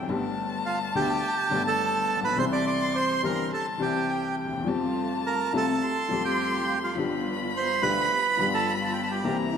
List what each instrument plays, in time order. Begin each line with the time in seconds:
Already playing: violin G5
0.02 upright piano F#2
0.08 upright piano G1 G2 D3 A3 B3 G4, violin A5
0.66 bandoneon F4 F5
0.95 upright piano D2 D3 A3 B3 G4, bandoneon G4 G5
1.49 upright piano G1 G2 D3 A3 B3
1.53 upright piano G4
1.67 bandoneon A4 A5
2.16 upright piano A1
2.23 upright piano A#1, bandoneon B4 B5
2.30 upright piano B1
2.36 upright piano C2 C3 E3 G3 C4 G4, bandoneon C5 C6, violin C6
2.52 bandoneon D5 D6
2.67 bandoneon D5 D6
2.95 bandoneon C5 C6
3.23 upright piano G1 G2 E3 G3 C4 G4, bandoneon A#4 A#5
3.54 bandoneon A4 A5, violin A5
3.78 upright piano C2 C3 E3 G3 C4
3.82 upright piano G4, bandoneon G4 G5
4.10 violin G5
4.45 upright piano D2
4.53 upright piano D#2
4.59 upright piano E2
4.66 upright piano F2 F3 A3 C4 G4, string section G3 A3 F4, violin A5
5.26 bandoneon A#4 A#5
5.53 upright piano C2 C3 F3 A3 C4 G4, string section G3 A3 F4, bandoneon A4
5.58 bandoneon A5
5.82 violin C6
6.09 upright piano F2 F3 A3 C4, string section G3 A3 F4
6.13 upright piano G4
6.25 bandoneon G4 G5
6.84 bandoneon F4 F5
6.95 upright piano G1 G2 F3 B3 D4, string section G3 B3 F4, violin B5
6.99 upright piano G4
7.57 bandoneon C5 C6
7.82 upright piano D2 D3 F3 B3 D4 G4, string section G3 B3 F4, bandoneon B4 B5
8.37 upright piano G1 G2 F3 B3 D4, string section G3 B3 F4
8.41 upright piano G4
8.54 bandoneon A4 A5
8.74 bandoneon B5
8.84 bandoneon A5
8.93 bandoneon G5
9.02 bandoneon A5
9.11 bandoneon G4 G5
9.24 upright piano C2 C3 E3 A#3 C4 G4, string section A#3 C4 E4, violin A#5